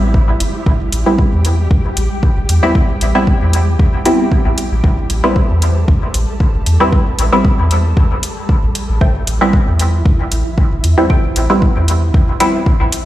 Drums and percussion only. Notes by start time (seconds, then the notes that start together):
0.14 kick
0.40 closed hi-hat
0.66 kick
0.92 closed hi-hat
1.19 kick
1.45 closed hi-hat
1.71 kick
1.97 closed hi-hat
2.23 kick
2.49 closed hi-hat
2.75 kick
3.01 closed hi-hat
3.27 kick
3.53 closed hi-hat
3.79 kick
4.05 closed hi-hat
4.32 kick
4.58 closed hi-hat
4.84 kick
5.10 closed hi-hat
5.36 kick
5.62 closed hi-hat
5.88 kick
6.14 closed hi-hat
6.40 kick
6.66 closed hi-hat
6.92 kick
7.19 closed hi-hat
7.45 kick
7.71 closed hi-hat
7.97 kick
8.23 closed hi-hat
8.49 kick
8.75 closed hi-hat
9.01 kick
9.27 closed hi-hat
9.53 kick
9.79 closed hi-hat
10.05 kick
10.32 closed hi-hat
10.58 kick
10.84 closed hi-hat
11.10 kick
11.36 closed hi-hat
11.62 kick
11.88 closed hi-hat
12.14 kick
12.40 closed hi-hat
12.66 kick
12.92 closed hi-hat